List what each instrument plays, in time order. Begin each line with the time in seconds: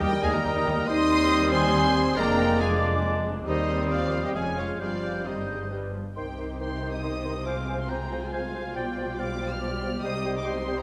0.00 cello section D#2, double bass section D#2, bassoon G3, viola section G3 D#4, french horn section G3, cor anglais G4, clarinet A#4, violin section D#5 G5, flute section D#6
0.12 cello section D#2, viola section G3 D#4
0.22 cello section D#2, double bass section D#2, viola section G3 D#4, french horn section G#3, cor anglais G#4, violin section F5 G#5
0.32 cello section D#2, viola section G3 D#4, french horn section A#3, cor anglais A#4, violin section G5 A#5
0.44 cello section D#2, double bass section D#2, viola section G3 D#4
0.54 cello section D#2, viola section G3 D#4
0.66 cello section D#2, double bass section D#2, viola section G3 D#4
0.77 cello section D#2, viola section G3 D#4
0.88 cello section D#2, double bass section D#2, viola section G3 C4, bassoon G3, french horn section D#4, clarinet C5, cor anglais D#5, violin section C6 D#6, flute section D#6
1.51 french horn section C4, cor anglais C5, violin section G#5 C6
2.16 double bass section F1, cello section F2, viola section G#3 D4, bassoon G#3, french horn section A#3, cor anglais A#4, clarinet D5, violin section G5 A#5, flute section D6
2.59 viola section G#3 D4, french horn section G#3, cor anglais G#4, violin section F5 G#5
3.46 cello section D#2, double bass section D#2, french horn section D#3, bassoon G3, viola section G3 C4, cor anglais D#4, violin section C5 D#5, clarinet C5, flute section D#6
3.91 french horn section F3, cor anglais F4, violin section D5 F5
4.24 french horn section G3, cor anglais G4, violin section D#5 G5
4.35 double bass section F1, cello section F2, bassoon G#3, viola section G#3 C#4, french horn section G#3, cor anglais G#4, clarinet C#5, violin section F5 G#5, flute section F6
4.58 french horn section F3, cor anglais F4, violin section C#5 F5
4.79 double bass section G1, cello section G2, french horn section F3, bassoon G3, viola section G3 C4, cor anglais F4, clarinet C5, violin section D5 F5, flute section G6
5.25 french horn section D#3, viola section G3, bassoon G3, cor anglais D#4, clarinet C5, violin section C5 D#5, flute section G6
5.49 viola section G#3
5.71 bassoon G3, viola section G3, clarinet B4, flute section G6
5.94 viola section F3
6.16 double bass section C2, cello section C3, bassoon D#3, french horn section G3 D#4, viola section C4 D#4, violin section G4 C5 G5, clarinet C5, flute section C6
6.38 bassoon D#3, clarinet C5, flute section C6
6.60 bassoon D#3, clarinet C5, cor anglais G5, flute section C6, violin section C6
6.82 bassoon D#3, clarinet C5, flute section C6
6.93 violin section D#6
7.03 bassoon D#3, clarinet C5, cor anglais D#5, flute section C6
7.25 bassoon D#3, clarinet C5, flute section C6
7.46 bassoon F3, french horn section G#3 F4, viola section F4, violin section G#4 D6, clarinet C5, cor anglais F5, flute section G#5
7.68 bassoon F3, clarinet C5, flute section G#5
7.80 violin section C6
7.89 bassoon F3, clarinet C5, cor anglais G5, flute section G#5, violin section A#5
8.11 bassoon F3, clarinet C5, flute section G#5
8.23 violin section G#5
8.31 bassoon F3, clarinet C5, violin section F5, flute section G#5, cor anglais G#5
8.53 bassoon F3, clarinet C5, flute section G#5
8.75 double bass section B1, cello section B2, bassoon F3, viola section G3, french horn section G3, violin section G4 D5 G5, clarinet D5, flute section G5, cor anglais G5
8.97 bassoon F3, clarinet D5, flute section G5
9.17 bassoon F3, clarinet D5, cor anglais F5, flute section G5, violin section D6
9.39 bassoon F3, clarinet D5, flute section G5
9.49 violin section F6
9.60 bassoon F3, cor anglais D5, clarinet D5, flute section G5
9.81 bassoon F3, clarinet D5, flute section G5
10.02 double bass section C2, cello section C3, bassoon G3, viola section D#4, french horn section G4, violin section C5 D#6, clarinet C5, cor anglais D#5, flute section G5
10.25 bassoon G3, clarinet C5, flute section G5
10.37 violin section D6
10.45 bassoon G3, clarinet C5, flute section G5, violin section C6
10.67 bassoon G3, clarinet C5, flute section G5
10.79 violin section A#5